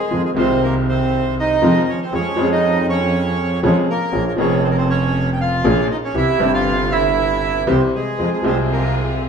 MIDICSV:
0, 0, Header, 1, 6, 480
1, 0, Start_track
1, 0, Key_signature, -4, "minor"
1, 0, Tempo, 502934
1, 104, Time_signature, 4, 2, 24, 8
1, 5383, Tempo, 510638
1, 8812, End_track
2, 0, Start_track
2, 0, Title_t, "Bandoneon"
2, 0, Program_c, 0, 23
2, 0, Note_on_c, 0, 56, 55
2, 0, Note_on_c, 0, 68, 79
2, 211, Note_off_c, 0, 68, 0
2, 215, Note_off_c, 0, 56, 0
2, 238, Note_on_c, 0, 68, 65
2, 243, Note_on_c, 0, 56, 48
2, 290, Note_off_c, 0, 68, 0
2, 294, Note_off_c, 0, 56, 0
2, 363, Note_on_c, 0, 72, 73
2, 376, Note_on_c, 0, 60, 57
2, 588, Note_off_c, 0, 60, 0
2, 604, Note_off_c, 0, 72, 0
2, 604, Note_on_c, 0, 70, 68
2, 610, Note_on_c, 0, 58, 58
2, 709, Note_off_c, 0, 70, 0
2, 714, Note_off_c, 0, 58, 0
2, 849, Note_on_c, 0, 72, 75
2, 856, Note_on_c, 0, 60, 57
2, 1286, Note_off_c, 0, 72, 0
2, 1290, Note_off_c, 0, 60, 0
2, 1330, Note_on_c, 0, 75, 86
2, 1340, Note_on_c, 0, 63, 68
2, 1772, Note_off_c, 0, 63, 0
2, 1805, Note_on_c, 0, 73, 72
2, 1814, Note_off_c, 0, 75, 0
2, 1816, Note_on_c, 0, 61, 55
2, 1909, Note_off_c, 0, 73, 0
2, 1915, Note_off_c, 0, 61, 0
2, 1932, Note_on_c, 0, 72, 67
2, 1944, Note_on_c, 0, 60, 54
2, 2033, Note_off_c, 0, 72, 0
2, 2039, Note_off_c, 0, 60, 0
2, 2047, Note_on_c, 0, 73, 87
2, 2055, Note_on_c, 0, 61, 67
2, 2373, Note_off_c, 0, 73, 0
2, 2377, Note_off_c, 0, 61, 0
2, 2406, Note_on_c, 0, 75, 84
2, 2414, Note_on_c, 0, 63, 73
2, 2732, Note_off_c, 0, 75, 0
2, 2737, Note_off_c, 0, 63, 0
2, 2762, Note_on_c, 0, 73, 90
2, 2766, Note_on_c, 0, 61, 68
2, 3434, Note_off_c, 0, 73, 0
2, 3436, Note_off_c, 0, 61, 0
2, 3486, Note_on_c, 0, 73, 76
2, 3496, Note_on_c, 0, 61, 58
2, 3588, Note_off_c, 0, 73, 0
2, 3597, Note_off_c, 0, 61, 0
2, 3722, Note_on_c, 0, 70, 87
2, 3727, Note_on_c, 0, 58, 64
2, 4047, Note_off_c, 0, 70, 0
2, 4050, Note_off_c, 0, 58, 0
2, 4080, Note_on_c, 0, 70, 70
2, 4085, Note_on_c, 0, 58, 62
2, 4130, Note_off_c, 0, 70, 0
2, 4133, Note_off_c, 0, 58, 0
2, 4200, Note_on_c, 0, 73, 85
2, 4204, Note_on_c, 0, 61, 68
2, 4414, Note_off_c, 0, 73, 0
2, 4416, Note_off_c, 0, 61, 0
2, 4434, Note_on_c, 0, 72, 86
2, 4443, Note_on_c, 0, 60, 67
2, 4458, Note_off_c, 0, 72, 0
2, 4465, Note_off_c, 0, 60, 0
2, 4494, Note_on_c, 0, 70, 73
2, 4547, Note_off_c, 0, 70, 0
2, 4559, Note_on_c, 0, 72, 82
2, 4562, Note_on_c, 0, 60, 61
2, 4662, Note_off_c, 0, 72, 0
2, 4663, Note_off_c, 0, 60, 0
2, 4676, Note_on_c, 0, 73, 88
2, 4681, Note_on_c, 0, 61, 68
2, 5054, Note_off_c, 0, 73, 0
2, 5057, Note_off_c, 0, 61, 0
2, 5088, Note_on_c, 0, 79, 70
2, 5148, Note_off_c, 0, 79, 0
2, 5162, Note_on_c, 0, 77, 91
2, 5169, Note_on_c, 0, 65, 79
2, 5598, Note_off_c, 0, 77, 0
2, 5602, Note_off_c, 0, 65, 0
2, 5641, Note_on_c, 0, 75, 77
2, 5647, Note_on_c, 0, 63, 65
2, 5690, Note_off_c, 0, 75, 0
2, 5695, Note_off_c, 0, 63, 0
2, 5764, Note_on_c, 0, 73, 80
2, 5767, Note_on_c, 0, 61, 65
2, 5865, Note_off_c, 0, 61, 0
2, 5875, Note_off_c, 0, 73, 0
2, 5879, Note_on_c, 0, 64, 71
2, 5881, Note_on_c, 0, 76, 95
2, 6204, Note_off_c, 0, 64, 0
2, 6205, Note_off_c, 0, 76, 0
2, 6230, Note_on_c, 0, 65, 78
2, 6230, Note_on_c, 0, 77, 100
2, 6558, Note_off_c, 0, 65, 0
2, 6585, Note_on_c, 0, 76, 90
2, 6589, Note_on_c, 0, 64, 69
2, 6594, Note_off_c, 0, 77, 0
2, 7267, Note_off_c, 0, 64, 0
2, 7320, Note_on_c, 0, 72, 72
2, 7321, Note_on_c, 0, 60, 57
2, 7324, Note_off_c, 0, 76, 0
2, 7424, Note_off_c, 0, 60, 0
2, 7424, Note_off_c, 0, 72, 0
2, 7558, Note_on_c, 0, 68, 75
2, 7562, Note_on_c, 0, 56, 56
2, 7885, Note_off_c, 0, 68, 0
2, 7887, Note_off_c, 0, 56, 0
2, 7911, Note_on_c, 0, 56, 51
2, 7914, Note_on_c, 0, 68, 65
2, 8018, Note_off_c, 0, 56, 0
2, 8019, Note_off_c, 0, 68, 0
2, 8037, Note_on_c, 0, 60, 60
2, 8038, Note_on_c, 0, 72, 73
2, 8142, Note_off_c, 0, 60, 0
2, 8142, Note_off_c, 0, 72, 0
2, 8283, Note_on_c, 0, 70, 71
2, 8286, Note_on_c, 0, 58, 55
2, 8497, Note_off_c, 0, 70, 0
2, 8498, Note_off_c, 0, 58, 0
2, 8812, End_track
3, 0, Start_track
3, 0, Title_t, "Flute"
3, 0, Program_c, 1, 73
3, 0, Note_on_c, 1, 68, 66
3, 106, Note_off_c, 1, 68, 0
3, 8812, End_track
4, 0, Start_track
4, 0, Title_t, "String section"
4, 0, Program_c, 2, 48
4, 7781, Note_on_c, 2, 60, 43
4, 7783, Note_on_c, 2, 65, 41
4, 7786, Note_on_c, 2, 68, 51
4, 7983, Note_off_c, 2, 60, 0
4, 7984, Note_off_c, 2, 65, 0
4, 7985, Note_off_c, 2, 68, 0
4, 8019, Note_on_c, 2, 60, 77
4, 8020, Note_on_c, 2, 65, 73
4, 8025, Note_on_c, 2, 68, 81
4, 8812, Note_off_c, 2, 60, 0
4, 8812, Note_off_c, 2, 65, 0
4, 8812, Note_off_c, 2, 68, 0
4, 8812, End_track
5, 0, Start_track
5, 0, Title_t, "Upright piano"
5, 0, Program_c, 3, 0
5, 102, Note_on_c, 3, 51, 38
5, 103, Note_on_c, 3, 56, 38
5, 104, Note_on_c, 3, 41, 49
5, 104, Note_on_c, 3, 53, 47
5, 105, Note_on_c, 3, 60, 36
5, 108, Note_on_c, 3, 65, 47
5, 307, Note_off_c, 3, 51, 0
5, 307, Note_off_c, 3, 56, 0
5, 308, Note_off_c, 3, 41, 0
5, 308, Note_off_c, 3, 53, 0
5, 308, Note_off_c, 3, 60, 0
5, 310, Note_off_c, 3, 65, 0
5, 331, Note_on_c, 3, 51, 66
5, 345, Note_on_c, 3, 56, 59
5, 348, Note_on_c, 3, 48, 72
5, 350, Note_on_c, 3, 36, 80
5, 357, Note_on_c, 3, 60, 60
5, 370, Note_on_c, 3, 65, 76
5, 1481, Note_off_c, 3, 51, 0
5, 1488, Note_off_c, 3, 56, 0
5, 1490, Note_off_c, 3, 48, 0
5, 1491, Note_off_c, 3, 36, 0
5, 1495, Note_off_c, 3, 60, 0
5, 1501, Note_off_c, 3, 65, 0
5, 1545, Note_on_c, 3, 51, 64
5, 1545, Note_on_c, 3, 56, 60
5, 1546, Note_on_c, 3, 53, 77
5, 1549, Note_on_c, 3, 41, 80
5, 1549, Note_on_c, 3, 60, 62
5, 1552, Note_on_c, 3, 65, 70
5, 1749, Note_off_c, 3, 51, 0
5, 1749, Note_off_c, 3, 53, 0
5, 1749, Note_off_c, 3, 56, 0
5, 1751, Note_off_c, 3, 41, 0
5, 1751, Note_off_c, 3, 60, 0
5, 1752, Note_off_c, 3, 65, 0
5, 2027, Note_on_c, 3, 41, 53
5, 2027, Note_on_c, 3, 61, 38
5, 2028, Note_on_c, 3, 56, 41
5, 2029, Note_on_c, 3, 53, 53
5, 2032, Note_on_c, 3, 68, 50
5, 2229, Note_off_c, 3, 41, 0
5, 2229, Note_off_c, 3, 56, 0
5, 2229, Note_off_c, 3, 61, 0
5, 2230, Note_off_c, 3, 53, 0
5, 2231, Note_off_c, 3, 68, 0
5, 2252, Note_on_c, 3, 53, 81
5, 2261, Note_on_c, 3, 56, 63
5, 2269, Note_on_c, 3, 41, 77
5, 2275, Note_on_c, 3, 61, 66
5, 2288, Note_on_c, 3, 68, 71
5, 3402, Note_off_c, 3, 56, 0
5, 3406, Note_off_c, 3, 41, 0
5, 3406, Note_off_c, 3, 53, 0
5, 3409, Note_off_c, 3, 61, 0
5, 3416, Note_off_c, 3, 68, 0
5, 3465, Note_on_c, 3, 53, 82
5, 3467, Note_on_c, 3, 56, 64
5, 3469, Note_on_c, 3, 41, 80
5, 3469, Note_on_c, 3, 68, 72
5, 3470, Note_on_c, 3, 61, 63
5, 3666, Note_off_c, 3, 53, 0
5, 3667, Note_off_c, 3, 56, 0
5, 3668, Note_off_c, 3, 41, 0
5, 3668, Note_off_c, 3, 61, 0
5, 3668, Note_off_c, 3, 68, 0
5, 3933, Note_on_c, 3, 53, 42
5, 3935, Note_on_c, 3, 58, 43
5, 3936, Note_on_c, 3, 61, 44
5, 3937, Note_on_c, 3, 46, 52
5, 3939, Note_on_c, 3, 34, 52
5, 3939, Note_on_c, 3, 68, 48
5, 4139, Note_off_c, 3, 53, 0
5, 4140, Note_off_c, 3, 58, 0
5, 4140, Note_off_c, 3, 61, 0
5, 4141, Note_off_c, 3, 46, 0
5, 4142, Note_off_c, 3, 34, 0
5, 4142, Note_off_c, 3, 68, 0
5, 4158, Note_on_c, 3, 53, 72
5, 4173, Note_on_c, 3, 58, 60
5, 4182, Note_on_c, 3, 29, 81
5, 4182, Note_on_c, 3, 41, 77
5, 4188, Note_on_c, 3, 61, 63
5, 4199, Note_on_c, 3, 68, 71
5, 5310, Note_off_c, 3, 53, 0
5, 5317, Note_off_c, 3, 58, 0
5, 5322, Note_off_c, 3, 29, 0
5, 5322, Note_off_c, 3, 41, 0
5, 5325, Note_off_c, 3, 61, 0
5, 5330, Note_off_c, 3, 68, 0
5, 5385, Note_on_c, 3, 53, 67
5, 5385, Note_on_c, 3, 58, 66
5, 5386, Note_on_c, 3, 46, 82
5, 5389, Note_on_c, 3, 61, 60
5, 5390, Note_on_c, 3, 34, 81
5, 5390, Note_on_c, 3, 68, 77
5, 5584, Note_off_c, 3, 46, 0
5, 5584, Note_off_c, 3, 53, 0
5, 5584, Note_off_c, 3, 58, 0
5, 5586, Note_off_c, 3, 34, 0
5, 5586, Note_off_c, 3, 61, 0
5, 5586, Note_off_c, 3, 68, 0
5, 5856, Note_on_c, 3, 55, 38
5, 5857, Note_on_c, 3, 52, 45
5, 5858, Note_on_c, 3, 48, 49
5, 5859, Note_on_c, 3, 36, 52
5, 5860, Note_on_c, 3, 67, 51
5, 5861, Note_on_c, 3, 60, 39
5, 6059, Note_off_c, 3, 48, 0
5, 6059, Note_off_c, 3, 52, 0
5, 6059, Note_off_c, 3, 55, 0
5, 6060, Note_off_c, 3, 36, 0
5, 6060, Note_off_c, 3, 67, 0
5, 6061, Note_off_c, 3, 60, 0
5, 6076, Note_on_c, 3, 48, 68
5, 6093, Note_on_c, 3, 55, 60
5, 6094, Note_on_c, 3, 31, 76
5, 6095, Note_on_c, 3, 43, 79
5, 6103, Note_on_c, 3, 60, 59
5, 6116, Note_on_c, 3, 67, 78
5, 7227, Note_off_c, 3, 48, 0
5, 7235, Note_off_c, 3, 55, 0
5, 7236, Note_off_c, 3, 31, 0
5, 7236, Note_off_c, 3, 43, 0
5, 7240, Note_off_c, 3, 60, 0
5, 7247, Note_off_c, 3, 67, 0
5, 7293, Note_on_c, 3, 52, 63
5, 7294, Note_on_c, 3, 36, 81
5, 7294, Note_on_c, 3, 48, 69
5, 7295, Note_on_c, 3, 55, 62
5, 7295, Note_on_c, 3, 60, 57
5, 7297, Note_on_c, 3, 67, 65
5, 7499, Note_off_c, 3, 36, 0
5, 7499, Note_off_c, 3, 48, 0
5, 7499, Note_off_c, 3, 52, 0
5, 7500, Note_off_c, 3, 55, 0
5, 7500, Note_off_c, 3, 60, 0
5, 7501, Note_off_c, 3, 67, 0
5, 7776, Note_on_c, 3, 53, 51
5, 7777, Note_on_c, 3, 41, 48
5, 7778, Note_on_c, 3, 56, 37
5, 7779, Note_on_c, 3, 68, 46
5, 7782, Note_on_c, 3, 60, 39
5, 7980, Note_off_c, 3, 41, 0
5, 7981, Note_off_c, 3, 53, 0
5, 7981, Note_off_c, 3, 56, 0
5, 7982, Note_off_c, 3, 68, 0
5, 7983, Note_off_c, 3, 60, 0
5, 7998, Note_on_c, 3, 53, 70
5, 8011, Note_on_c, 3, 56, 60
5, 8019, Note_on_c, 3, 48, 72
5, 8020, Note_on_c, 3, 36, 75
5, 8023, Note_on_c, 3, 60, 61
5, 8035, Note_on_c, 3, 68, 72
5, 8812, Note_off_c, 3, 36, 0
5, 8812, Note_off_c, 3, 48, 0
5, 8812, Note_off_c, 3, 53, 0
5, 8812, Note_off_c, 3, 56, 0
5, 8812, Note_off_c, 3, 60, 0
5, 8812, Note_off_c, 3, 68, 0
5, 8812, End_track
6, 0, Start_track
6, 0, Title_t, "Double bass"
6, 0, Program_c, 4, 43
6, 106, Note_on_c, 4, 41, 55
6, 309, Note_off_c, 4, 41, 0
6, 346, Note_on_c, 4, 36, 85
6, 1489, Note_off_c, 4, 36, 0
6, 1552, Note_on_c, 4, 41, 76
6, 1752, Note_off_c, 4, 41, 0
6, 2030, Note_on_c, 4, 41, 56
6, 2231, Note_off_c, 4, 41, 0
6, 2269, Note_on_c, 4, 41, 81
6, 3406, Note_off_c, 4, 41, 0
6, 3470, Note_on_c, 4, 41, 78
6, 3668, Note_off_c, 4, 41, 0
6, 3942, Note_on_c, 4, 34, 57
6, 4144, Note_off_c, 4, 34, 0
6, 4188, Note_on_c, 4, 29, 87
6, 5325, Note_off_c, 4, 29, 0
6, 5387, Note_on_c, 4, 34, 84
6, 5585, Note_off_c, 4, 34, 0
6, 5857, Note_on_c, 4, 36, 57
6, 6059, Note_off_c, 4, 36, 0
6, 6098, Note_on_c, 4, 31, 93
6, 7238, Note_off_c, 4, 31, 0
6, 7300, Note_on_c, 4, 36, 78
6, 7502, Note_off_c, 4, 36, 0
6, 7780, Note_on_c, 4, 41, 54
6, 7982, Note_off_c, 4, 41, 0
6, 8018, Note_on_c, 4, 36, 83
6, 8812, Note_off_c, 4, 36, 0
6, 8812, End_track
0, 0, End_of_file